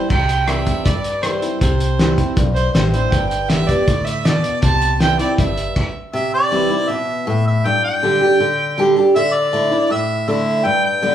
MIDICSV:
0, 0, Header, 1, 6, 480
1, 0, Start_track
1, 0, Key_signature, 0, "major"
1, 0, Tempo, 376648
1, 133, Time_signature, 4, 2, 24, 8
1, 14208, End_track
2, 0, Start_track
2, 0, Title_t, "Harmonica"
2, 0, Program_c, 0, 22
2, 7834, Note_on_c, 0, 76, 117
2, 8053, Note_off_c, 0, 76, 0
2, 8080, Note_on_c, 0, 74, 111
2, 8792, Note_on_c, 0, 76, 107
2, 8812, Note_off_c, 0, 74, 0
2, 9269, Note_off_c, 0, 76, 0
2, 9286, Note_on_c, 0, 76, 91
2, 9499, Note_off_c, 0, 76, 0
2, 9523, Note_on_c, 0, 76, 107
2, 9762, Note_on_c, 0, 79, 123
2, 9781, Note_off_c, 0, 76, 0
2, 9987, Note_off_c, 0, 79, 0
2, 9994, Note_on_c, 0, 79, 121
2, 11376, Note_off_c, 0, 79, 0
2, 11676, Note_on_c, 0, 76, 127
2, 11897, Note_on_c, 0, 74, 113
2, 11916, Note_off_c, 0, 76, 0
2, 12618, Note_off_c, 0, 74, 0
2, 12633, Note_on_c, 0, 76, 105
2, 13072, Note_off_c, 0, 76, 0
2, 13112, Note_on_c, 0, 76, 105
2, 13591, Note_on_c, 0, 79, 127
2, 13610, Note_off_c, 0, 76, 0
2, 13824, Note_off_c, 0, 79, 0
2, 13831, Note_on_c, 0, 79, 126
2, 14208, Note_off_c, 0, 79, 0
2, 14208, End_track
3, 0, Start_track
3, 0, Title_t, "Fiddle"
3, 0, Program_c, 1, 110
3, 130, Note_on_c, 1, 79, 77
3, 611, Note_on_c, 1, 76, 81
3, 630, Note_off_c, 1, 79, 0
3, 1090, Note_on_c, 1, 74, 82
3, 1109, Note_off_c, 1, 76, 0
3, 1557, Note_on_c, 1, 72, 76
3, 1576, Note_off_c, 1, 74, 0
3, 2032, Note_off_c, 1, 72, 0
3, 2040, Note_on_c, 1, 72, 72
3, 2959, Note_off_c, 1, 72, 0
3, 3235, Note_on_c, 1, 72, 84
3, 3470, Note_off_c, 1, 72, 0
3, 3487, Note_on_c, 1, 72, 76
3, 3716, Note_off_c, 1, 72, 0
3, 3726, Note_on_c, 1, 72, 77
3, 3962, Note_on_c, 1, 79, 88
3, 3981, Note_off_c, 1, 72, 0
3, 4183, Note_off_c, 1, 79, 0
3, 4191, Note_on_c, 1, 79, 76
3, 4439, Note_on_c, 1, 76, 92
3, 4458, Note_off_c, 1, 79, 0
3, 4678, Note_on_c, 1, 74, 83
3, 4697, Note_off_c, 1, 76, 0
3, 5157, Note_on_c, 1, 76, 89
3, 5176, Note_off_c, 1, 74, 0
3, 5420, Note_on_c, 1, 74, 88
3, 5439, Note_off_c, 1, 76, 0
3, 5887, Note_off_c, 1, 74, 0
3, 5894, Note_on_c, 1, 81, 97
3, 6346, Note_off_c, 1, 81, 0
3, 6389, Note_on_c, 1, 79, 99
3, 6610, Note_off_c, 1, 79, 0
3, 6617, Note_on_c, 1, 74, 81
3, 6844, Note_off_c, 1, 74, 0
3, 6864, Note_on_c, 1, 76, 75
3, 7535, Note_off_c, 1, 76, 0
3, 14208, End_track
4, 0, Start_track
4, 0, Title_t, "Steel-string acoustic guitar"
4, 0, Program_c, 2, 25
4, 124, Note_on_c, 2, 48, 74
4, 600, Note_on_c, 2, 52, 42
4, 607, Note_on_c, 2, 55, 48
4, 615, Note_on_c, 2, 60, 57
4, 623, Note_on_c, 2, 64, 58
4, 1041, Note_off_c, 2, 48, 0
4, 1063, Note_off_c, 2, 52, 0
4, 1067, Note_off_c, 2, 55, 0
4, 1071, Note_off_c, 2, 60, 0
4, 1074, Note_off_c, 2, 64, 0
4, 1082, Note_on_c, 2, 43, 72
4, 1567, Note_on_c, 2, 52, 49
4, 1582, Note_on_c, 2, 55, 56
4, 1583, Note_on_c, 2, 60, 55
4, 1588, Note_on_c, 2, 64, 53
4, 1792, Note_off_c, 2, 64, 0
4, 1801, Note_off_c, 2, 52, 0
4, 1808, Note_on_c, 2, 64, 51
4, 1809, Note_off_c, 2, 55, 0
4, 1809, Note_off_c, 2, 60, 0
4, 1831, Note_on_c, 2, 60, 37
4, 2001, Note_off_c, 2, 43, 0
4, 2042, Note_off_c, 2, 64, 0
4, 2054, Note_off_c, 2, 60, 0
4, 2059, Note_on_c, 2, 48, 89
4, 2541, Note_on_c, 2, 52, 52
4, 2543, Note_on_c, 2, 55, 45
4, 2555, Note_on_c, 2, 60, 56
4, 2560, Note_on_c, 2, 64, 59
4, 2766, Note_off_c, 2, 64, 0
4, 2769, Note_off_c, 2, 52, 0
4, 2771, Note_off_c, 2, 55, 0
4, 2776, Note_off_c, 2, 60, 0
4, 2782, Note_on_c, 2, 64, 47
4, 2798, Note_on_c, 2, 60, 43
4, 2971, Note_off_c, 2, 48, 0
4, 3010, Note_off_c, 2, 64, 0
4, 3012, Note_on_c, 2, 43, 76
4, 3018, Note_off_c, 2, 60, 0
4, 3507, Note_on_c, 2, 52, 49
4, 3510, Note_on_c, 2, 55, 55
4, 3519, Note_on_c, 2, 64, 58
4, 3520, Note_on_c, 2, 60, 60
4, 3722, Note_off_c, 2, 64, 0
4, 3733, Note_off_c, 2, 52, 0
4, 3735, Note_off_c, 2, 55, 0
4, 3738, Note_on_c, 2, 64, 53
4, 3740, Note_off_c, 2, 60, 0
4, 3753, Note_on_c, 2, 60, 46
4, 3929, Note_off_c, 2, 43, 0
4, 3969, Note_off_c, 2, 64, 0
4, 3977, Note_off_c, 2, 60, 0
4, 3990, Note_on_c, 2, 43, 82
4, 4467, Note_on_c, 2, 50, 48
4, 4470, Note_on_c, 2, 55, 58
4, 4476, Note_on_c, 2, 59, 52
4, 4482, Note_on_c, 2, 67, 62
4, 4692, Note_off_c, 2, 67, 0
4, 4695, Note_off_c, 2, 50, 0
4, 4696, Note_off_c, 2, 55, 0
4, 4699, Note_off_c, 2, 59, 0
4, 4707, Note_on_c, 2, 67, 50
4, 4723, Note_on_c, 2, 59, 43
4, 4899, Note_off_c, 2, 43, 0
4, 4935, Note_off_c, 2, 67, 0
4, 4941, Note_on_c, 2, 45, 68
4, 4943, Note_off_c, 2, 59, 0
4, 5399, Note_off_c, 2, 45, 0
4, 5421, Note_on_c, 2, 47, 77
4, 5879, Note_off_c, 2, 47, 0
4, 5912, Note_on_c, 2, 48, 84
4, 6378, Note_on_c, 2, 52, 49
4, 6391, Note_on_c, 2, 55, 48
4, 6393, Note_on_c, 2, 60, 53
4, 6397, Note_on_c, 2, 64, 56
4, 6607, Note_off_c, 2, 64, 0
4, 6612, Note_off_c, 2, 52, 0
4, 6618, Note_off_c, 2, 55, 0
4, 6619, Note_off_c, 2, 60, 0
4, 6622, Note_on_c, 2, 64, 61
4, 6642, Note_on_c, 2, 60, 49
4, 6821, Note_off_c, 2, 48, 0
4, 6854, Note_off_c, 2, 64, 0
4, 6864, Note_off_c, 2, 60, 0
4, 6865, Note_on_c, 2, 43, 74
4, 7346, Note_off_c, 2, 43, 0
4, 7818, Note_on_c, 2, 48, 94
4, 8299, Note_on_c, 2, 52, 83
4, 8308, Note_on_c, 2, 55, 84
4, 8314, Note_on_c, 2, 60, 80
4, 8315, Note_on_c, 2, 64, 98
4, 8526, Note_off_c, 2, 64, 0
4, 8532, Note_off_c, 2, 52, 0
4, 8537, Note_off_c, 2, 55, 0
4, 8540, Note_off_c, 2, 60, 0
4, 8541, Note_on_c, 2, 64, 71
4, 8560, Note_on_c, 2, 60, 56
4, 8733, Note_off_c, 2, 48, 0
4, 8774, Note_off_c, 2, 64, 0
4, 8783, Note_off_c, 2, 60, 0
4, 8786, Note_on_c, 2, 47, 92
4, 9241, Note_off_c, 2, 47, 0
4, 9264, Note_on_c, 2, 45, 94
4, 9720, Note_off_c, 2, 45, 0
4, 9755, Note_on_c, 2, 43, 107
4, 10229, Note_on_c, 2, 50, 88
4, 10235, Note_on_c, 2, 55, 82
4, 10241, Note_on_c, 2, 62, 78
4, 10254, Note_on_c, 2, 67, 84
4, 10454, Note_off_c, 2, 67, 0
4, 10457, Note_off_c, 2, 50, 0
4, 10460, Note_off_c, 2, 55, 0
4, 10462, Note_off_c, 2, 62, 0
4, 10469, Note_on_c, 2, 67, 73
4, 10487, Note_on_c, 2, 62, 57
4, 10661, Note_off_c, 2, 43, 0
4, 10697, Note_off_c, 2, 67, 0
4, 10705, Note_off_c, 2, 62, 0
4, 10706, Note_on_c, 2, 50, 88
4, 11169, Note_off_c, 2, 50, 0
4, 11184, Note_on_c, 2, 50, 90
4, 11188, Note_on_c, 2, 55, 82
4, 11198, Note_on_c, 2, 62, 98
4, 11206, Note_on_c, 2, 67, 107
4, 11411, Note_off_c, 2, 67, 0
4, 11413, Note_off_c, 2, 50, 0
4, 11415, Note_off_c, 2, 55, 0
4, 11420, Note_off_c, 2, 62, 0
4, 11426, Note_on_c, 2, 67, 65
4, 11450, Note_on_c, 2, 62, 55
4, 11654, Note_off_c, 2, 67, 0
4, 11666, Note_off_c, 2, 62, 0
4, 11673, Note_on_c, 2, 50, 102
4, 12127, Note_off_c, 2, 50, 0
4, 12142, Note_on_c, 2, 50, 84
4, 12144, Note_on_c, 2, 57, 98
4, 12154, Note_on_c, 2, 62, 96
4, 12155, Note_on_c, 2, 64, 99
4, 12365, Note_off_c, 2, 64, 0
4, 12371, Note_off_c, 2, 50, 0
4, 12372, Note_off_c, 2, 57, 0
4, 12377, Note_off_c, 2, 62, 0
4, 12380, Note_on_c, 2, 64, 71
4, 12396, Note_on_c, 2, 62, 51
4, 12610, Note_off_c, 2, 64, 0
4, 12618, Note_off_c, 2, 62, 0
4, 12618, Note_on_c, 2, 45, 87
4, 13096, Note_on_c, 2, 50, 91
4, 13099, Note_on_c, 2, 57, 94
4, 13105, Note_on_c, 2, 62, 82
4, 13115, Note_on_c, 2, 64, 106
4, 13529, Note_off_c, 2, 45, 0
4, 13553, Note_off_c, 2, 50, 0
4, 13554, Note_off_c, 2, 57, 0
4, 13557, Note_off_c, 2, 62, 0
4, 13562, Note_off_c, 2, 64, 0
4, 13569, Note_on_c, 2, 43, 94
4, 14046, Note_on_c, 2, 50, 84
4, 14050, Note_on_c, 2, 55, 88
4, 14059, Note_on_c, 2, 59, 94
4, 14065, Note_on_c, 2, 67, 84
4, 14208, Note_off_c, 2, 43, 0
4, 14208, Note_off_c, 2, 50, 0
4, 14208, Note_off_c, 2, 55, 0
4, 14208, Note_off_c, 2, 59, 0
4, 14208, Note_off_c, 2, 67, 0
4, 14208, End_track
5, 0, Start_track
5, 0, Title_t, "Fingered electric bass"
5, 0, Program_c, 3, 33
5, 133, Note_on_c, 3, 36, 74
5, 870, Note_off_c, 3, 36, 0
5, 1091, Note_on_c, 3, 43, 72
5, 1830, Note_off_c, 3, 43, 0
5, 2057, Note_on_c, 3, 36, 79
5, 2795, Note_off_c, 3, 36, 0
5, 3020, Note_on_c, 3, 35, 80
5, 3428, Note_off_c, 3, 35, 0
5, 3492, Note_on_c, 3, 33, 71
5, 3904, Note_off_c, 3, 33, 0
5, 3981, Note_on_c, 3, 31, 74
5, 4719, Note_off_c, 3, 31, 0
5, 4940, Note_on_c, 3, 38, 78
5, 5679, Note_off_c, 3, 38, 0
5, 5894, Note_on_c, 3, 36, 74
5, 6636, Note_off_c, 3, 36, 0
5, 6861, Note_on_c, 3, 31, 70
5, 7231, Note_off_c, 3, 31, 0
5, 14208, End_track
6, 0, Start_track
6, 0, Title_t, "Drums"
6, 128, Note_on_c, 9, 49, 74
6, 131, Note_on_c, 9, 36, 89
6, 256, Note_off_c, 9, 49, 0
6, 259, Note_off_c, 9, 36, 0
6, 371, Note_on_c, 9, 42, 64
6, 498, Note_off_c, 9, 42, 0
6, 607, Note_on_c, 9, 37, 100
6, 607, Note_on_c, 9, 42, 68
6, 734, Note_off_c, 9, 37, 0
6, 734, Note_off_c, 9, 42, 0
6, 847, Note_on_c, 9, 42, 60
6, 851, Note_on_c, 9, 36, 71
6, 975, Note_off_c, 9, 42, 0
6, 978, Note_off_c, 9, 36, 0
6, 1090, Note_on_c, 9, 42, 82
6, 1092, Note_on_c, 9, 36, 102
6, 1218, Note_off_c, 9, 42, 0
6, 1220, Note_off_c, 9, 36, 0
6, 1331, Note_on_c, 9, 42, 58
6, 1459, Note_off_c, 9, 42, 0
6, 1568, Note_on_c, 9, 37, 92
6, 1568, Note_on_c, 9, 42, 69
6, 1695, Note_off_c, 9, 37, 0
6, 1695, Note_off_c, 9, 42, 0
6, 1814, Note_on_c, 9, 42, 53
6, 1942, Note_off_c, 9, 42, 0
6, 2056, Note_on_c, 9, 36, 90
6, 2057, Note_on_c, 9, 42, 73
6, 2183, Note_off_c, 9, 36, 0
6, 2184, Note_off_c, 9, 42, 0
6, 2299, Note_on_c, 9, 42, 57
6, 2426, Note_off_c, 9, 42, 0
6, 2542, Note_on_c, 9, 38, 96
6, 2542, Note_on_c, 9, 42, 62
6, 2669, Note_off_c, 9, 38, 0
6, 2669, Note_off_c, 9, 42, 0
6, 2778, Note_on_c, 9, 36, 65
6, 2778, Note_on_c, 9, 42, 54
6, 2905, Note_off_c, 9, 36, 0
6, 2906, Note_off_c, 9, 42, 0
6, 3019, Note_on_c, 9, 36, 104
6, 3020, Note_on_c, 9, 42, 76
6, 3147, Note_off_c, 9, 36, 0
6, 3147, Note_off_c, 9, 42, 0
6, 3267, Note_on_c, 9, 42, 51
6, 3394, Note_off_c, 9, 42, 0
6, 3502, Note_on_c, 9, 38, 91
6, 3502, Note_on_c, 9, 42, 67
6, 3629, Note_off_c, 9, 38, 0
6, 3629, Note_off_c, 9, 42, 0
6, 3742, Note_on_c, 9, 42, 57
6, 3869, Note_off_c, 9, 42, 0
6, 3979, Note_on_c, 9, 36, 93
6, 3980, Note_on_c, 9, 42, 75
6, 4107, Note_off_c, 9, 36, 0
6, 4107, Note_off_c, 9, 42, 0
6, 4220, Note_on_c, 9, 42, 55
6, 4347, Note_off_c, 9, 42, 0
6, 4455, Note_on_c, 9, 38, 79
6, 4455, Note_on_c, 9, 42, 71
6, 4582, Note_off_c, 9, 38, 0
6, 4582, Note_off_c, 9, 42, 0
6, 4699, Note_on_c, 9, 42, 60
6, 4700, Note_on_c, 9, 36, 69
6, 4826, Note_off_c, 9, 42, 0
6, 4827, Note_off_c, 9, 36, 0
6, 4939, Note_on_c, 9, 42, 79
6, 4940, Note_on_c, 9, 36, 100
6, 5066, Note_off_c, 9, 42, 0
6, 5068, Note_off_c, 9, 36, 0
6, 5183, Note_on_c, 9, 42, 58
6, 5311, Note_off_c, 9, 42, 0
6, 5421, Note_on_c, 9, 38, 91
6, 5421, Note_on_c, 9, 42, 73
6, 5548, Note_off_c, 9, 38, 0
6, 5548, Note_off_c, 9, 42, 0
6, 5657, Note_on_c, 9, 42, 56
6, 5785, Note_off_c, 9, 42, 0
6, 5891, Note_on_c, 9, 42, 77
6, 5897, Note_on_c, 9, 36, 100
6, 6018, Note_off_c, 9, 42, 0
6, 6025, Note_off_c, 9, 36, 0
6, 6137, Note_on_c, 9, 42, 58
6, 6264, Note_off_c, 9, 42, 0
6, 6378, Note_on_c, 9, 38, 85
6, 6378, Note_on_c, 9, 42, 62
6, 6506, Note_off_c, 9, 38, 0
6, 6506, Note_off_c, 9, 42, 0
6, 6620, Note_on_c, 9, 42, 60
6, 6747, Note_off_c, 9, 42, 0
6, 6862, Note_on_c, 9, 36, 102
6, 6863, Note_on_c, 9, 42, 68
6, 6990, Note_off_c, 9, 36, 0
6, 6991, Note_off_c, 9, 42, 0
6, 7105, Note_on_c, 9, 42, 56
6, 7232, Note_off_c, 9, 42, 0
6, 7339, Note_on_c, 9, 49, 77
6, 7343, Note_on_c, 9, 36, 88
6, 7467, Note_off_c, 9, 49, 0
6, 7471, Note_off_c, 9, 36, 0
6, 14208, End_track
0, 0, End_of_file